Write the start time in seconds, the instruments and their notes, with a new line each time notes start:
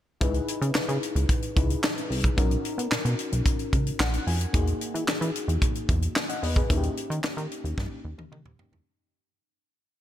0.21 analog synth bass C#2, fm electric piano D#4 E4 G#4 B4, kick, closed hi-hat
0.34 closed hi-hat
0.48 closed hi-hat
0.61 analog synth bass C#3, closed hi-hat
0.75 analog synth bass C#3, snare, clap
0.88 analog synth bass C#3, closed hi-hat
1.03 closed hi-hat
1.15 analog synth bass C#2, closed hi-hat
1.29 kick, closed hi-hat
1.43 closed hi-hat
1.56 analog synth bass C#2, fm electric piano D#4 E4 G#4 B4, kick, closed hi-hat
1.70 closed hi-hat
1.83 snare, clap
1.98 closed hi-hat
2.10 analog synth bass C2, open hi-hat
2.24 kick, closed hi-hat
2.37 analog synth bass B1, fm electric piano C#4 D#4 F#4 A#4, kick, closed hi-hat
2.51 closed hi-hat
2.65 closed hi-hat
2.78 analog synth bass B2, closed hi-hat
2.91 analog synth bass B2, snare, clap
3.05 analog synth bass B2, closed hi-hat
3.19 closed hi-hat
3.32 analog synth bass B1, closed hi-hat
3.46 kick, closed hi-hat
3.59 closed hi-hat
3.73 analog synth bass C#2, kick, closed hi-hat
3.87 closed hi-hat
4.00 analog synth bass A#1, fm electric piano F#5, snare, clap
4.14 closed hi-hat
4.27 analog synth bass F2, fm electric piano G#5, open hi-hat
4.41 closed hi-hat
4.53 analog synth bass E2, fm electric piano A#3 D#4 F#4 G#4, kick, closed hi-hat
4.67 closed hi-hat
4.81 closed hi-hat
4.94 analog synth bass E3, closed hi-hat
5.07 analog synth bass E3, snare, clap
5.21 analog synth bass E3, closed hi-hat
5.36 closed hi-hat
5.48 analog synth bass E2, closed hi-hat
5.62 kick, closed hi-hat
5.75 closed hi-hat
5.89 analog synth bass E2, kick, closed hi-hat
6.02 closed hi-hat
6.16 snare, clap
6.29 fm electric piano D#5 F#5, closed hi-hat
6.43 analog synth bass E2, fm electric piano B4 D#5, open hi-hat
6.56 fm electric piano G#4 B4, kick, closed hi-hat
6.70 analog synth bass D#2, fm electric piano A#3 C#4 D#4 E4, kick, closed hi-hat
6.77 fm electric piano G4
6.83 closed hi-hat
6.97 closed hi-hat
7.10 analog synth bass D#3, closed hi-hat
7.24 snare, clap
7.37 analog synth bass D#3, closed hi-hat
7.52 closed hi-hat
7.64 analog synth bass D#2, closed hi-hat
7.78 analog synth bass G2, kick, snare
8.05 analog synth bass D#2
8.18 analog synth bass D#2, high tom
8.32 analog synth bass D#3, mid tom
8.45 analog synth bass D#2, mid tom
8.59 fm electric piano A#3 C#4 D#4 G4, floor tom
8.72 analog synth bass E2, floor tom